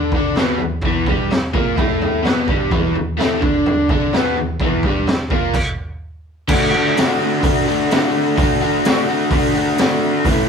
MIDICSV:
0, 0, Header, 1, 3, 480
1, 0, Start_track
1, 0, Tempo, 470219
1, 864, Time_signature, 4, 2, 24, 8
1, 10707, End_track
2, 0, Start_track
2, 0, Title_t, "Overdriven electric guitar"
2, 0, Program_c, 0, 29
2, 0, Note_on_c, 0, 50, 87
2, 0, Note_on_c, 0, 62, 101
2, 129, Note_off_c, 0, 50, 0
2, 135, Note_off_c, 0, 62, 0
2, 148, Note_on_c, 0, 50, 78
2, 164, Note_on_c, 0, 62, 92
2, 378, Note_off_c, 0, 50, 0
2, 383, Note_on_c, 0, 47, 89
2, 387, Note_off_c, 0, 62, 0
2, 394, Note_on_c, 0, 59, 95
2, 616, Note_off_c, 0, 47, 0
2, 622, Note_off_c, 0, 59, 0
2, 627, Note_on_c, 0, 40, 73
2, 818, Note_off_c, 0, 40, 0
2, 865, Note_on_c, 0, 40, 76
2, 872, Note_on_c, 0, 52, 89
2, 1098, Note_off_c, 0, 40, 0
2, 1102, Note_off_c, 0, 52, 0
2, 1105, Note_on_c, 0, 43, 80
2, 1113, Note_on_c, 0, 55, 101
2, 1339, Note_off_c, 0, 43, 0
2, 1342, Note_off_c, 0, 55, 0
2, 1568, Note_on_c, 0, 46, 91
2, 1583, Note_on_c, 0, 58, 93
2, 1798, Note_off_c, 0, 46, 0
2, 1802, Note_on_c, 0, 45, 91
2, 1806, Note_off_c, 0, 58, 0
2, 1810, Note_on_c, 0, 57, 102
2, 2273, Note_off_c, 0, 45, 0
2, 2277, Note_on_c, 0, 47, 83
2, 2285, Note_off_c, 0, 57, 0
2, 2290, Note_on_c, 0, 59, 91
2, 2526, Note_off_c, 0, 47, 0
2, 2530, Note_on_c, 0, 43, 96
2, 2532, Note_off_c, 0, 59, 0
2, 2548, Note_on_c, 0, 55, 105
2, 2762, Note_off_c, 0, 43, 0
2, 2766, Note_on_c, 0, 40, 90
2, 2775, Note_off_c, 0, 55, 0
2, 2779, Note_on_c, 0, 52, 110
2, 2999, Note_off_c, 0, 40, 0
2, 3011, Note_on_c, 0, 40, 69
2, 3018, Note_off_c, 0, 52, 0
2, 3213, Note_off_c, 0, 40, 0
2, 3239, Note_on_c, 0, 45, 79
2, 3250, Note_on_c, 0, 57, 97
2, 3472, Note_off_c, 0, 45, 0
2, 3476, Note_on_c, 0, 50, 88
2, 3482, Note_off_c, 0, 57, 0
2, 3486, Note_on_c, 0, 62, 99
2, 3965, Note_off_c, 0, 50, 0
2, 3973, Note_off_c, 0, 62, 0
2, 3977, Note_on_c, 0, 50, 94
2, 3985, Note_on_c, 0, 62, 94
2, 4215, Note_off_c, 0, 50, 0
2, 4219, Note_on_c, 0, 47, 80
2, 4222, Note_off_c, 0, 62, 0
2, 4233, Note_on_c, 0, 59, 97
2, 4459, Note_off_c, 0, 47, 0
2, 4464, Note_on_c, 0, 40, 74
2, 4466, Note_off_c, 0, 59, 0
2, 4661, Note_off_c, 0, 40, 0
2, 4705, Note_on_c, 0, 40, 94
2, 4719, Note_on_c, 0, 52, 99
2, 4942, Note_off_c, 0, 40, 0
2, 4949, Note_on_c, 0, 43, 91
2, 4950, Note_off_c, 0, 52, 0
2, 4962, Note_on_c, 0, 55, 90
2, 5184, Note_off_c, 0, 43, 0
2, 5191, Note_off_c, 0, 55, 0
2, 5424, Note_on_c, 0, 46, 93
2, 5436, Note_on_c, 0, 58, 96
2, 5662, Note_off_c, 0, 46, 0
2, 5668, Note_off_c, 0, 58, 0
2, 6614, Note_on_c, 0, 50, 89
2, 6631, Note_on_c, 0, 57, 103
2, 6646, Note_on_c, 0, 62, 86
2, 6660, Note_on_c, 0, 66, 105
2, 6840, Note_off_c, 0, 66, 0
2, 6845, Note_on_c, 0, 66, 77
2, 6877, Note_off_c, 0, 62, 0
2, 6881, Note_on_c, 0, 62, 67
2, 6895, Note_off_c, 0, 57, 0
2, 6899, Note_on_c, 0, 57, 64
2, 7095, Note_off_c, 0, 50, 0
2, 7099, Note_on_c, 0, 50, 78
2, 7107, Note_off_c, 0, 57, 0
2, 7111, Note_on_c, 0, 57, 76
2, 7132, Note_off_c, 0, 62, 0
2, 7136, Note_on_c, 0, 62, 84
2, 7139, Note_off_c, 0, 66, 0
2, 7144, Note_on_c, 0, 66, 81
2, 7333, Note_off_c, 0, 66, 0
2, 7337, Note_on_c, 0, 66, 76
2, 7362, Note_off_c, 0, 62, 0
2, 7366, Note_on_c, 0, 62, 67
2, 7392, Note_off_c, 0, 57, 0
2, 7396, Note_on_c, 0, 57, 61
2, 7558, Note_off_c, 0, 50, 0
2, 7562, Note_on_c, 0, 50, 87
2, 7584, Note_off_c, 0, 57, 0
2, 7588, Note_on_c, 0, 57, 92
2, 7600, Note_off_c, 0, 62, 0
2, 7605, Note_off_c, 0, 66, 0
2, 7612, Note_on_c, 0, 62, 107
2, 7617, Note_on_c, 0, 66, 110
2, 7800, Note_off_c, 0, 66, 0
2, 7812, Note_on_c, 0, 66, 69
2, 7822, Note_off_c, 0, 62, 0
2, 7834, Note_on_c, 0, 62, 66
2, 7859, Note_off_c, 0, 57, 0
2, 7864, Note_on_c, 0, 57, 61
2, 8053, Note_off_c, 0, 50, 0
2, 8065, Note_on_c, 0, 50, 75
2, 8080, Note_off_c, 0, 57, 0
2, 8084, Note_on_c, 0, 57, 81
2, 8089, Note_off_c, 0, 62, 0
2, 8101, Note_on_c, 0, 62, 77
2, 8107, Note_off_c, 0, 66, 0
2, 8119, Note_on_c, 0, 66, 80
2, 8522, Note_off_c, 0, 50, 0
2, 8535, Note_on_c, 0, 50, 86
2, 8552, Note_off_c, 0, 57, 0
2, 8556, Note_on_c, 0, 57, 89
2, 8562, Note_off_c, 0, 62, 0
2, 8574, Note_off_c, 0, 66, 0
2, 8575, Note_on_c, 0, 62, 90
2, 8586, Note_on_c, 0, 66, 103
2, 8778, Note_off_c, 0, 66, 0
2, 8790, Note_on_c, 0, 66, 77
2, 8799, Note_off_c, 0, 62, 0
2, 8811, Note_on_c, 0, 62, 67
2, 8830, Note_off_c, 0, 57, 0
2, 8834, Note_on_c, 0, 57, 65
2, 9014, Note_off_c, 0, 50, 0
2, 9026, Note_on_c, 0, 50, 80
2, 9044, Note_off_c, 0, 57, 0
2, 9048, Note_on_c, 0, 57, 80
2, 9050, Note_off_c, 0, 62, 0
2, 9062, Note_off_c, 0, 66, 0
2, 9062, Note_on_c, 0, 62, 77
2, 9075, Note_on_c, 0, 66, 78
2, 9245, Note_off_c, 0, 66, 0
2, 9257, Note_on_c, 0, 66, 82
2, 9278, Note_off_c, 0, 62, 0
2, 9291, Note_on_c, 0, 62, 71
2, 9297, Note_off_c, 0, 57, 0
2, 9310, Note_on_c, 0, 57, 65
2, 9484, Note_off_c, 0, 50, 0
2, 9496, Note_on_c, 0, 50, 90
2, 9505, Note_off_c, 0, 57, 0
2, 9517, Note_on_c, 0, 57, 101
2, 9523, Note_off_c, 0, 62, 0
2, 9535, Note_off_c, 0, 66, 0
2, 9535, Note_on_c, 0, 62, 105
2, 9548, Note_on_c, 0, 66, 106
2, 9735, Note_off_c, 0, 66, 0
2, 9747, Note_on_c, 0, 66, 77
2, 9763, Note_off_c, 0, 62, 0
2, 9775, Note_on_c, 0, 62, 70
2, 9783, Note_off_c, 0, 57, 0
2, 9796, Note_on_c, 0, 57, 58
2, 9957, Note_off_c, 0, 50, 0
2, 9970, Note_on_c, 0, 50, 76
2, 9983, Note_off_c, 0, 57, 0
2, 9995, Note_on_c, 0, 57, 78
2, 10001, Note_off_c, 0, 62, 0
2, 10013, Note_on_c, 0, 62, 88
2, 10014, Note_off_c, 0, 66, 0
2, 10026, Note_on_c, 0, 66, 88
2, 10441, Note_off_c, 0, 50, 0
2, 10454, Note_off_c, 0, 57, 0
2, 10462, Note_on_c, 0, 45, 87
2, 10463, Note_off_c, 0, 62, 0
2, 10469, Note_off_c, 0, 66, 0
2, 10471, Note_on_c, 0, 52, 94
2, 10485, Note_on_c, 0, 57, 94
2, 10491, Note_on_c, 0, 61, 107
2, 10514, Note_on_c, 0, 64, 111
2, 10674, Note_off_c, 0, 64, 0
2, 10704, Note_off_c, 0, 61, 0
2, 10707, Note_off_c, 0, 45, 0
2, 10707, Note_off_c, 0, 52, 0
2, 10707, Note_off_c, 0, 57, 0
2, 10707, End_track
3, 0, Start_track
3, 0, Title_t, "Drums"
3, 118, Note_on_c, 9, 43, 60
3, 121, Note_on_c, 9, 36, 105
3, 220, Note_off_c, 9, 43, 0
3, 223, Note_off_c, 9, 36, 0
3, 361, Note_on_c, 9, 43, 79
3, 375, Note_on_c, 9, 38, 108
3, 463, Note_off_c, 9, 43, 0
3, 477, Note_off_c, 9, 38, 0
3, 594, Note_on_c, 9, 43, 59
3, 696, Note_off_c, 9, 43, 0
3, 831, Note_on_c, 9, 43, 86
3, 842, Note_on_c, 9, 36, 99
3, 933, Note_off_c, 9, 43, 0
3, 944, Note_off_c, 9, 36, 0
3, 1087, Note_on_c, 9, 36, 108
3, 1098, Note_on_c, 9, 43, 60
3, 1189, Note_off_c, 9, 36, 0
3, 1200, Note_off_c, 9, 43, 0
3, 1334, Note_on_c, 9, 43, 83
3, 1348, Note_on_c, 9, 38, 106
3, 1436, Note_off_c, 9, 43, 0
3, 1450, Note_off_c, 9, 38, 0
3, 1570, Note_on_c, 9, 36, 100
3, 1574, Note_on_c, 9, 43, 65
3, 1672, Note_off_c, 9, 36, 0
3, 1676, Note_off_c, 9, 43, 0
3, 1814, Note_on_c, 9, 36, 104
3, 1820, Note_on_c, 9, 43, 93
3, 1916, Note_off_c, 9, 36, 0
3, 1922, Note_off_c, 9, 43, 0
3, 2055, Note_on_c, 9, 43, 69
3, 2158, Note_off_c, 9, 43, 0
3, 2295, Note_on_c, 9, 43, 85
3, 2310, Note_on_c, 9, 38, 104
3, 2397, Note_off_c, 9, 43, 0
3, 2412, Note_off_c, 9, 38, 0
3, 2531, Note_on_c, 9, 36, 105
3, 2533, Note_on_c, 9, 43, 64
3, 2633, Note_off_c, 9, 36, 0
3, 2635, Note_off_c, 9, 43, 0
3, 2770, Note_on_c, 9, 36, 106
3, 2770, Note_on_c, 9, 43, 88
3, 2872, Note_off_c, 9, 43, 0
3, 2873, Note_off_c, 9, 36, 0
3, 3012, Note_on_c, 9, 43, 64
3, 3114, Note_off_c, 9, 43, 0
3, 3256, Note_on_c, 9, 43, 87
3, 3271, Note_on_c, 9, 38, 109
3, 3358, Note_off_c, 9, 43, 0
3, 3373, Note_off_c, 9, 38, 0
3, 3494, Note_on_c, 9, 36, 108
3, 3502, Note_on_c, 9, 43, 62
3, 3596, Note_off_c, 9, 36, 0
3, 3604, Note_off_c, 9, 43, 0
3, 3736, Note_on_c, 9, 43, 84
3, 3838, Note_off_c, 9, 43, 0
3, 3973, Note_on_c, 9, 36, 111
3, 3975, Note_on_c, 9, 43, 61
3, 4075, Note_off_c, 9, 36, 0
3, 4077, Note_off_c, 9, 43, 0
3, 4213, Note_on_c, 9, 43, 73
3, 4227, Note_on_c, 9, 38, 108
3, 4315, Note_off_c, 9, 43, 0
3, 4329, Note_off_c, 9, 38, 0
3, 4458, Note_on_c, 9, 43, 60
3, 4560, Note_off_c, 9, 43, 0
3, 4691, Note_on_c, 9, 36, 103
3, 4698, Note_on_c, 9, 43, 81
3, 4794, Note_off_c, 9, 36, 0
3, 4800, Note_off_c, 9, 43, 0
3, 4932, Note_on_c, 9, 36, 99
3, 4946, Note_on_c, 9, 43, 62
3, 5034, Note_off_c, 9, 36, 0
3, 5048, Note_off_c, 9, 43, 0
3, 5176, Note_on_c, 9, 43, 83
3, 5190, Note_on_c, 9, 38, 111
3, 5278, Note_off_c, 9, 43, 0
3, 5292, Note_off_c, 9, 38, 0
3, 5413, Note_on_c, 9, 36, 105
3, 5421, Note_on_c, 9, 43, 62
3, 5515, Note_off_c, 9, 36, 0
3, 5523, Note_off_c, 9, 43, 0
3, 5652, Note_on_c, 9, 36, 103
3, 5656, Note_on_c, 9, 49, 103
3, 5754, Note_off_c, 9, 36, 0
3, 5758, Note_off_c, 9, 49, 0
3, 6619, Note_on_c, 9, 36, 120
3, 6619, Note_on_c, 9, 49, 127
3, 6721, Note_off_c, 9, 36, 0
3, 6721, Note_off_c, 9, 49, 0
3, 7113, Note_on_c, 9, 46, 67
3, 7128, Note_on_c, 9, 38, 114
3, 7215, Note_off_c, 9, 46, 0
3, 7230, Note_off_c, 9, 38, 0
3, 7585, Note_on_c, 9, 36, 113
3, 7586, Note_on_c, 9, 46, 66
3, 7687, Note_off_c, 9, 36, 0
3, 7688, Note_off_c, 9, 46, 0
3, 8071, Note_on_c, 9, 46, 62
3, 8085, Note_on_c, 9, 38, 113
3, 8173, Note_off_c, 9, 46, 0
3, 8187, Note_off_c, 9, 38, 0
3, 8550, Note_on_c, 9, 36, 115
3, 8552, Note_on_c, 9, 46, 66
3, 8652, Note_off_c, 9, 36, 0
3, 8654, Note_off_c, 9, 46, 0
3, 9030, Note_on_c, 9, 46, 69
3, 9044, Note_on_c, 9, 38, 122
3, 9132, Note_off_c, 9, 46, 0
3, 9146, Note_off_c, 9, 38, 0
3, 9499, Note_on_c, 9, 46, 73
3, 9501, Note_on_c, 9, 36, 115
3, 9601, Note_off_c, 9, 46, 0
3, 9603, Note_off_c, 9, 36, 0
3, 9980, Note_on_c, 9, 46, 65
3, 9995, Note_on_c, 9, 38, 122
3, 10083, Note_off_c, 9, 46, 0
3, 10097, Note_off_c, 9, 38, 0
3, 10460, Note_on_c, 9, 36, 116
3, 10463, Note_on_c, 9, 46, 69
3, 10562, Note_off_c, 9, 36, 0
3, 10565, Note_off_c, 9, 46, 0
3, 10707, End_track
0, 0, End_of_file